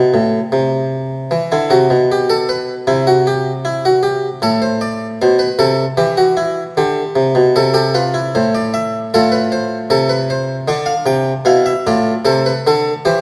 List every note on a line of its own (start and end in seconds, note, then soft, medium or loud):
0.00 0.14 B2 medium
0.14 0.38 A2 medium
0.52 1.29 C3 medium
1.31 1.50 E3 medium
1.52 1.71 D3 medium
1.52 1.71 E4 medium
1.70 1.90 C3 medium
1.70 1.95 F#4 medium
1.90 2.85 B2 medium
2.12 2.30 G4 medium
2.30 2.48 A4 medium
2.49 2.73 B4 medium
2.87 4.39 C3 medium
2.87 3.06 E4 medium
3.07 3.26 F#4 medium
3.27 3.51 G4 medium
3.65 3.84 E4 medium
3.85 4.04 F#4 medium
4.03 4.28 G4 medium
4.42 5.18 A2 medium
4.42 4.62 A4 medium
4.62 4.81 C5 medium
4.81 5.06 D5 medium
5.22 5.46 B2 medium
5.22 5.40 C5 medium
5.39 5.59 B4 medium
5.59 5.83 C3 medium
5.59 5.83 A4 medium
5.97 6.74 E3 medium
5.97 6.17 G4 medium
6.17 6.37 F#4 medium
6.37 6.62 E4 medium
6.77 7.02 D3 medium
6.77 7.54 G4 medium
7.16 7.35 C3 medium
7.35 7.55 B2 medium
7.56 8.32 C3 medium
7.56 7.73 A4 medium
7.74 7.94 G4 medium
7.74 7.94 A4 medium
7.94 8.14 F4 medium
7.94 8.19 B4 medium
8.14 9.09 E4 medium
8.35 9.11 A2 medium
8.35 8.54 C5 medium
8.55 8.73 D5 medium
8.74 8.98 E5 medium
9.14 9.90 A2 medium
9.14 10.67 F4 medium
9.14 9.32 A4 medium
9.32 9.51 B4 medium
9.52 9.76 C5 medium
9.90 10.67 C3 medium
9.90 10.10 A4 medium
10.09 10.29 B4 medium
10.30 10.54 C5 medium
10.68 10.93 D3 medium
10.68 11.45 D4 medium
10.68 10.88 D5 medium
10.86 11.06 F5 medium
11.06 11.31 C3 medium
11.06 11.32 G5 medium
11.45 11.71 B2 medium
11.45 11.71 E4 medium
11.45 11.66 F5 medium
11.66 11.86 E5 medium
11.87 12.12 A2 medium
11.87 12.12 F4 medium
11.87 12.12 D5 medium
12.25 12.50 C3 medium
12.25 12.66 A4 medium
12.25 12.46 C5 medium
12.46 12.66 B4 medium
12.67 12.91 D3 medium
12.67 12.92 A4 medium
13.05 13.21 E3 medium
13.05 13.21 G4 medium
13.05 13.21 C5 medium